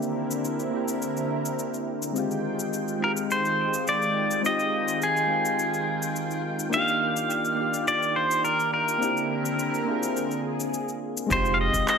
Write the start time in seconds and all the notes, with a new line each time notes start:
Already playing: D3 A#3 C4 D4 E4 G4 A#4
0.02 cabasa
0.31 cabasa
0.45 cabasa
0.59 cabasa
0.70 A#3 C4 D4
0.74 E4 G4
0.88 cabasa
1.02 cabasa
1.17 cabasa
1.45 cabasa
1.59 cabasa
1.74 cabasa
2.02 cabasa
2.13 D#3 G#3 C4 D#4 F4 G5, cabasa
2.18 F4 G4
2.31 cabasa
2.59 cabasa
2.73 cabasa
2.88 cabasa
2.99 G#3 C4 D#4
3.03 F4 G4 A#4
3.17 cabasa
3.31 C5, cabasa
3.45 cabasa
3.74 cabasa
3.87 D5, cabasa
4.02 cabasa
4.31 cabasa
4.41 G#3 C4 D#4, cabasa
4.46 F4 G4 D#5
4.59 cabasa
4.88 cabasa
5.02 G#4, cabasa
5.17 cabasa
5.27 G#3 C4 D#4
5.32 F4 G5
5.45 cabasa
5.59 cabasa
5.74 cabasa
6.02 cabasa
6.16 cabasa
6.31 cabasa
6.59 cabasa
6.70 A#3 D4 D#4 D5, cabasa
6.74 F4 G4 F5
6.88 cabasa
7.16 cabasa
7.30 cabasa
7.45 cabasa
7.55 A#3 D4 D#4
7.60 F4 G4
7.74 cabasa
7.88 D5, cabasa
8.03 cabasa
8.16 C5
8.31 cabasa
8.45 A#4, cabasa
8.60 cabasa
8.74 A#4
8.88 cabasa
8.98 D3 A#3 C4 D4
9.02 C4 E4 G4 A#4, cabasa
9.17 cabasa
9.45 cabasa
9.59 cabasa
9.74 cabasa
9.84 A#3 C4 D4
9.89 F4 G#4
10.03 cabasa
10.16 G#4, cabasa
10.31 cabasa
10.60 cabasa
10.74 cabasa
10.88 cabasa
11.17 cabasa
11.27 F1 G#3 C4 D#4, kick
11.31 F4 G4 C5, cabasa
11.45 cabasa
11.54 F5
11.61 D#5
11.74 F1, kick, cabasa
11.88 D#5, clap, cabasa